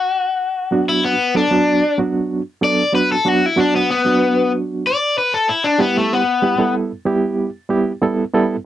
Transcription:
Already playing: overdriven electric guitar F#4
0.71 reed electric piano F#3 B3 D4 F#4
0.89 overdriven electric guitar E4
1.05 overdriven electric guitar B3
1.35 reed electric piano F#3 B3 D4 A4, overdriven electric guitar D4
1.51 reed electric piano F#3 B3 D4 F#4
1.98 reed electric piano F#3 B3 D4 F#4
2.61 reed electric piano F#3 B3 D4 A4, overdriven electric guitar D5
2.92 reed electric piano F#3 B3 D4 F#4, overdriven electric guitar B4
3.12 overdriven electric guitar A4
3.25 reed electric piano F#3 B3 D4 F#4, overdriven electric guitar F#4
3.46 overdriven electric guitar E4
3.56 reed electric piano F#3 B3 D4 F#4, overdriven electric guitar D4
3.76 overdriven electric guitar B3
3.91 overdriven electric guitar B3
4.05 reed electric piano F#3 B3 D4 F#4
4.87 overdriven electric guitar D5
5.18 overdriven electric guitar B4
5.34 overdriven electric guitar A4
5.49 overdriven electric guitar E4
5.64 overdriven electric guitar D4
5.78 reed electric piano G3 B3 E4 G4, overdriven electric guitar B3
5.97 overdriven electric guitar A3
6.13 overdriven electric guitar B3
6.42 reed electric piano G3 B3 E4 G4
6.59 reed electric piano G3 B3 E4 A4
7.05 reed electric piano G3 B3 E4 G4
7.69 reed electric piano G3 B3 E4 G4
8.02 reed electric piano G3 B3 E4 A4
8.34 reed electric piano G3 B3 E4 A4

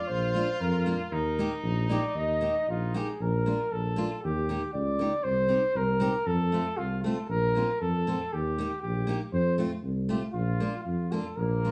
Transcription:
Already playing: trumpet F4
0.07 tuba A#1, flugelhorn C5
0.34 steel-string acoustic guitar A#3 D4 F4
0.61 tuba F2, flugelhorn A#4
0.86 steel-string acoustic guitar A#3 D4 F4
1.11 tuba D#2, trumpet D#4, flugelhorn A#4
1.39 steel-string acoustic guitar A#3 D#4 G4
1.63 tuba A#1
1.89 steel-string acoustic guitar A#3 D#4 G4, flugelhorn D5
2.14 tuba D#2, flugelhorn D#5
2.41 steel-string acoustic guitar A#3 D#4 G4
2.67 tuba A#1, trumpet D#4, flugelhorn F4
2.94 steel-string acoustic guitar A#3 D#4 G4, flugelhorn G#4
3.20 tuba A#1, flugelhorn A#4
3.46 steel-string acoustic guitar A#3 D4 F4
3.72 tuba A#1, flugelhorn A4
3.96 steel-string acoustic guitar A#3 D4 F4
4.23 tuba D#2, flugelhorn G4
4.49 steel-string acoustic guitar A#3 D#4 G4
4.73 tuba C#2, flugelhorn D5
4.99 steel-string acoustic guitar A#3 D#4 G4
5.23 tuba C2, flugelhorn C5
5.49 steel-string acoustic guitar C4 D#4 G4
5.75 tuba C2, flugelhorn A#4
6.00 steel-string acoustic guitar C4 D#4 G4
6.26 tuba F2, flugelhorn A4
6.52 steel-string acoustic guitar A3 C4 F4
6.77 tuba C2, flugelhorn F4
7.03 steel-string acoustic guitar A3 C4 F4, flugelhorn A4
7.29 tuba A#1, flugelhorn A#4
7.55 steel-string acoustic guitar A#3 C4 F4
7.81 tuba F2, flugelhorn A4
8.07 steel-string acoustic guitar A#3 C4 F4
8.33 tuba D#2, flugelhorn G4
8.58 steel-string acoustic guitar A#3 D#4 G4
8.82 tuba A#1, flugelhorn G4
9.07 steel-string acoustic guitar A#3 D#4 G4
9.33 tuba F2, flugelhorn C5
9.58 steel-string acoustic guitar A3 C4 F4
9.83 tuba C2
10.09 steel-string acoustic guitar A3 C4 F4, flugelhorn G4
10.33 tuba A#1, flugelhorn F4
10.60 steel-string acoustic guitar A#3 D4 F4
10.84 tuba F2, flugelhorn F4
11.12 steel-string acoustic guitar A#3 D4 F4, flugelhorn A4
11.36 tuba A#1, trumpet A#3, flugelhorn A#4
11.64 steel-string acoustic guitar A#3 D4 F4

